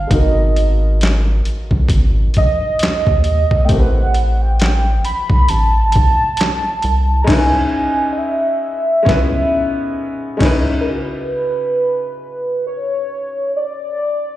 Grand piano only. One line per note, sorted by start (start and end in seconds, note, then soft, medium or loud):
0.07 3.63 G#3 medium
0.07 3.64 B3 medium
0.11 3.65 D#4 medium
0.11 3.66 F#4 medium
0.11 3.67 A#4 medium
3.65 7.22 A3 medium
3.65 7.23 C4 medium
3.65 7.24 E4 medium
3.72 7.25 G4 medium
3.72 3.79 A#4 medium
3.80 7.29 B4 medium
7.24 7.57 G#3 loud
7.24 7.58 C#4 loud
7.24 7.59 D#4 medium
7.30 7.60 E4 medium
7.30 7.61 B4 medium
9.03 9.36 G#3 medium
9.03 9.37 C#4 loud
9.07 9.38 B3 loud
9.07 9.39 E4 loud
9.07 9.40 B4 loud
10.37 10.70 G#3 medium
10.37 10.71 C#4 loud
10.41 10.73 D#4 loud
10.41 10.73 E4 medium
10.41 10.75 B4 loud
10.83 14.37 C#3 soft
10.83 14.37 G#3 soft
10.83 14.37 E4 soft
10.89 14.37 F#4 soft
10.89 14.37 B4 medium